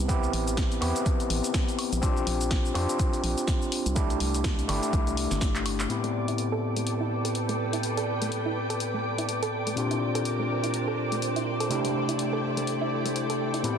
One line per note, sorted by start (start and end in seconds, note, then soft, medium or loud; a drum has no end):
0.00 0.31 C2 medium
0.08 0.79 B3 medium
0.08 0.79 C4 medium
0.08 0.80 E4 medium
0.08 0.80 G4 medium
0.08 kick loud
0.08 closed hi-hat medium
0.08 cabasa medium
0.23 cabasa soft
0.33 0.79 A1 loud
0.33 open hi-hat loud
0.48 closed hi-hat soft
0.48 cabasa medium
0.57 kick loud
0.57 snare loud
0.57 closed hi-hat medium
0.57 cabasa medium
0.72 closed hi-hat soft
0.72 cabasa soft
0.81 0.93 E2 medium
0.81 2.00 B3 medium
0.81 2.00 C4 medium
0.81 2.00 E4 medium
0.81 2.01 G4 medium
0.81 open hi-hat medium
0.81 high woodblock medium
0.96 closed hi-hat soft
0.96 cabasa medium
1.06 kick loud
1.06 closed hi-hat medium
1.06 cabasa medium
1.20 closed hi-hat soft
1.20 cabasa soft
1.30 1.42 A1 medium
1.30 open hi-hat loud
1.44 closed hi-hat soft
1.44 cabasa medium
1.54 kick loud
1.54 snare loud
1.54 closed hi-hat medium
1.54 cabasa medium
1.68 closed hi-hat soft
1.68 cabasa soft
1.79 open hi-hat medium
1.79 high woodblock medium
1.93 2.24 A#1 medium
1.93 closed hi-hat soft
1.93 cabasa medium
2.02 2.72 C4 medium
2.02 2.73 D4 medium
2.02 2.73 F4 medium
2.02 2.73 G4 medium
2.02 kick loud
2.02 closed hi-hat medium
2.02 cabasa medium
2.17 cabasa soft
2.27 2.73 A#1 loud
2.27 open hi-hat loud
2.41 closed hi-hat medium
2.41 cabasa medium
2.51 kick loud
2.51 snare loud
2.51 closed hi-hat medium
2.51 cabasa medium
2.65 cabasa soft
2.74 2.87 F2 medium
2.74 3.93 C4 medium
2.74 3.94 D4 medium
2.74 3.94 F4 medium
2.74 3.94 G4 medium
2.74 open hi-hat medium
2.74 high woodblock medium
2.89 closed hi-hat medium
2.89 cabasa medium
2.99 kick loud
2.99 closed hi-hat medium
2.99 cabasa medium
3.13 closed hi-hat soft
3.13 cabasa soft
3.24 3.35 A#1 medium
3.24 open hi-hat medium
3.38 closed hi-hat medium
3.38 cabasa medium
3.48 kick loud
3.48 snare loud
3.48 closed hi-hat medium
3.48 cabasa medium
3.62 cabasa soft
3.72 open hi-hat medium
3.86 4.18 C2 medium
3.86 closed hi-hat medium
3.86 cabasa medium
3.95 4.66 A3 medium
3.95 4.66 D4 medium
3.95 4.67 E4 medium
3.95 4.67 G4 medium
3.95 kick loud
3.95 closed hi-hat medium
3.95 cabasa medium
4.10 closed hi-hat soft
4.10 cabasa soft
4.20 4.66 C2 loud
4.20 open hi-hat medium
4.34 closed hi-hat medium
4.34 cabasa medium
4.44 kick loud
4.44 snare loud
4.44 closed hi-hat medium
4.44 cabasa medium
4.59 closed hi-hat soft
4.59 cabasa soft
4.68 4.81 G1 loud
4.68 5.87 A3 medium
4.68 5.87 D4 medium
4.68 5.88 E4 medium
4.68 5.88 G4 loud
4.68 open hi-hat medium
4.68 high woodblock medium
4.83 closed hi-hat medium
4.83 cabasa medium
4.93 5.28 C2 medium
4.93 kick loud
4.93 closed hi-hat medium
4.93 cabasa medium
5.07 closed hi-hat soft
5.07 cabasa soft
5.17 open hi-hat loud
5.31 5.87 G1 loud
5.31 snare soft
5.31 closed hi-hat medium
5.31 cabasa medium
5.41 kick loud
5.41 snare loud
5.41 closed hi-hat medium
5.41 cabasa medium
5.56 clap medium
5.56 closed hi-hat soft
5.56 cabasa soft
5.66 open hi-hat medium
5.66 high woodblock medium
5.80 clap medium
5.80 closed hi-hat medium
5.80 cabasa medium
5.89 9.74 A2 medium
5.89 9.74 B3 medium
5.89 9.74 C4 medium
5.89 9.75 E4 medium
5.89 9.75 G4 medium
5.89 9.73 A4 medium
5.89 9.73 B4 medium
5.89 13.78 D5 medium
5.89 11.67 G5 medium
5.89 13.78 D6 medium
5.89 closed hi-hat medium
6.04 6.07 A3 medium
6.04 closed hi-hat soft
6.28 6.33 E4 medium
6.28 closed hi-hat soft
6.38 closed hi-hat medium
6.52 6.57 A4 medium
6.76 6.80 A3 medium
6.76 closed hi-hat soft
6.87 closed hi-hat medium
7.01 7.06 E4 medium
7.25 7.30 A4 medium
7.25 closed hi-hat soft
7.35 closed hi-hat medium
7.49 7.52 A3 medium
7.49 closed hi-hat soft
7.73 7.78 E4 medium
7.73 closed hi-hat soft
7.83 closed hi-hat medium
7.97 8.03 A4 medium
7.97 closed hi-hat soft
8.22 8.25 A3 medium
8.22 closed hi-hat soft
8.32 closed hi-hat medium
8.46 8.51 E4 medium
8.70 8.75 A4 medium
8.70 closed hi-hat soft
8.80 closed hi-hat medium
8.94 8.97 A3 medium
9.18 9.24 E4 medium
9.18 closed hi-hat soft
9.29 closed hi-hat medium
9.43 9.48 A4 loud
9.43 closed hi-hat soft
9.67 9.70 A3 medium
9.67 closed hi-hat soft
9.76 11.68 A#2 medium
9.76 11.68 C4 medium
9.76 11.68 D4 medium
9.76 11.69 D4 medium
9.76 11.68 F4 medium
9.76 11.69 G4 medium
9.76 11.69 A#4 medium
9.76 13.60 C5 medium
9.76 closed hi-hat medium
9.91 9.96 E4 medium
9.91 closed hi-hat soft
10.15 10.20 A4 loud
10.15 closed hi-hat soft
10.25 closed hi-hat medium
10.39 10.42 A3 medium
10.64 10.69 E4 medium
10.64 closed hi-hat soft
10.74 closed hi-hat medium
10.88 10.93 A4 medium
11.12 11.15 A3 medium
11.12 closed hi-hat soft
11.22 closed hi-hat medium
11.36 11.41 E4 medium
11.36 closed hi-hat soft
11.60 11.66 A4 loud
11.60 closed hi-hat soft
11.69 13.61 C3 medium
11.69 13.61 A3 medium
11.69 13.62 D4 medium
11.69 13.62 E4 medium
11.69 13.62 G4 medium
11.69 13.78 A4 medium
11.69 13.78 G5 medium
11.69 closed hi-hat medium
11.85 11.88 A3 medium
11.85 closed hi-hat soft
12.09 12.14 E4 medium
12.09 closed hi-hat soft
12.19 closed hi-hat medium
12.33 12.38 A4 loud
12.57 12.60 A3 medium
12.57 closed hi-hat soft
12.67 closed hi-hat medium
12.81 12.87 E4 medium
13.06 13.13 A3 medium
13.06 closed hi-hat soft
13.16 closed hi-hat medium
13.30 13.35 A4 medium
13.30 closed hi-hat soft
13.54 13.62 E4 medium
13.54 closed hi-hat soft
13.63 13.78 A2 medium
13.63 13.78 B3 medium
13.63 13.78 C4 medium
13.63 13.78 E4 medium
13.63 13.78 G4 medium
13.63 13.78 B4 medium
13.63 closed hi-hat medium